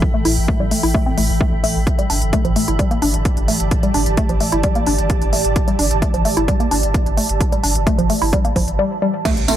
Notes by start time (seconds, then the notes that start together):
Already playing: A2 E3 A4 E5 G5
0.02 kick
0.14 A3
0.25 A1 E4, open hi-hat
0.37 A1
0.48 A3, kick
0.60 A1 G3
0.71 A3, open hi-hat
0.83 A1 E4, open hi-hat
0.94 A3, kick
1.06 C4
1.17 A1 A3, open hi-hat
1.29 A1
1.41 A3, kick
1.53 A1
1.64 A3, open hi-hat
1.76 A1
1.87 G4, kick, closed hi-hat
1.99 G3, closed hi-hat
2.04 A5
2.10 G1 D4 D5, open hi-hat
2.22 G1, closed hi-hat
2.33 A3, kick, closed hi-hat
2.45 G1 F3, closed hi-hat
2.56 A3, open hi-hat
2.68 G1 E4, closed hi-hat
2.79 G3, kick, closed hi-hat
2.91 A#3, closed hi-hat
3.02 G1 D4, open hi-hat
3.14 G1, closed hi-hat
3.25 kick, closed hi-hat
3.37 G1, closed hi-hat
3.48 A3, open hi-hat
3.60 G1, closed hi-hat
3.71 kick, closed hi-hat
3.83 G3, closed hi-hat
3.94 G1 D4, open hi-hat
4.06 G1, closed hi-hat
4.17 A3, kick, closed hi-hat
4.29 G1 F3, closed hi-hat
4.40 A3, open hi-hat
4.52 G1 E4, closed hi-hat
4.63 G3, kick, closed hi-hat
4.75 A#3, closed hi-hat
4.87 G1 D4, open hi-hat
4.98 G1, closed hi-hat
5.10 kick, closed hi-hat
5.22 G1, closed hi-hat
5.33 A3, open hi-hat
5.45 G1, closed hi-hat
5.56 kick, closed hi-hat
5.68 G3, closed hi-hat
5.79 G1 D4, open hi-hat
5.91 G1, closed hi-hat
6.02 A3, kick, closed hi-hat
6.14 G1 F3, closed hi-hat
6.25 A3, open hi-hat
6.37 G1 E4, closed hi-hat
6.48 G3, kick, closed hi-hat
6.60 A#3, closed hi-hat
6.71 G1 D4, open hi-hat
6.83 G1, closed hi-hat
6.94 kick, closed hi-hat
7.06 G1, closed hi-hat
7.17 A3, open hi-hat
7.29 G1, closed hi-hat
7.41 kick, closed hi-hat
7.52 G3, closed hi-hat
7.63 G1 D4, open hi-hat
7.75 G1, closed hi-hat
7.87 A3, kick, closed hi-hat
7.98 G1 F3, closed hi-hat
8.10 A3, open hi-hat
8.22 G1 E4, open hi-hat
8.33 G3, kick, closed hi-hat
8.45 A#3, closed hi-hat
8.56 G1 F3, kick, open hi-hat
8.68 G1, closed hi-hat
8.79 G3
9.02 G3
9.25 A3 A4, kick, closed hi-hat, tambourine, crash, impact
9.37 closed hi-hat
9.41 E5
9.48 A1 A3 C4 E4 A4, open hi-hat, mid tom, tambourine